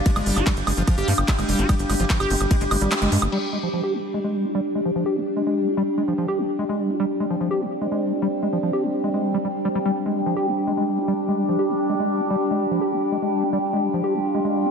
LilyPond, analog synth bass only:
\new Staff \with { instrumentName = "Analog synth bass" } { \clef bass \time 4/4 \key c \minor \tempo 4 = 147 r16 g,,16 g,,16 g,,16 r16 g,,16 g,,16 g,,16 r16 g,,16 g,16 g,,16 r16 g,,16 f,,16 g,,16 | r16 g,,16 g,,16 g,,16 r16 g,,16 g,,16 g,,16 r16 g,,16 g,,16 aes,,16 r16 g,,16 g,16 g,,16 | r1 | r1 |
r1 | r1 | r1 | r1 |
r1 | }